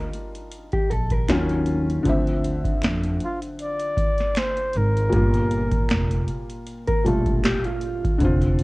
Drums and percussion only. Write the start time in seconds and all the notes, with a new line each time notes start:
0.13 closed hi-hat
0.35 closed hi-hat
0.51 closed hi-hat
0.72 kick, closed hi-hat
0.91 closed hi-hat
1.10 kick, closed hi-hat
1.29 finger snap, snare, closed hi-hat
1.49 closed hi-hat
1.66 closed hi-hat
1.90 closed hi-hat
2.05 kick, closed hi-hat
2.27 closed hi-hat
2.44 closed hi-hat
2.65 kick, closed hi-hat
2.82 finger snap, snare, closed hi-hat
3.04 closed hi-hat
3.21 closed hi-hat
3.42 closed hi-hat
3.59 closed hi-hat
3.80 closed hi-hat
3.97 kick, closed hi-hat
4.18 snare, closed hi-hat
4.35 finger snap, snare, closed hi-hat
4.57 closed hi-hat
4.73 closed hi-hat
4.97 closed hi-hat
5.12 kick, closed hi-hat
5.34 closed hi-hat
5.51 closed hi-hat
5.72 kick, closed hi-hat
5.89 finger snap, snare, closed hi-hat
6.11 closed hi-hat
6.28 closed hi-hat
6.50 closed hi-hat
6.67 closed hi-hat
6.87 kick, closed hi-hat
7.06 closed hi-hat
7.26 kick, closed hi-hat
7.44 finger snap, snare, closed hi-hat
7.64 closed hi-hat
7.81 closed hi-hat
8.04 kick, closed hi-hat
8.20 kick, closed hi-hat
8.42 closed hi-hat
8.59 closed hi-hat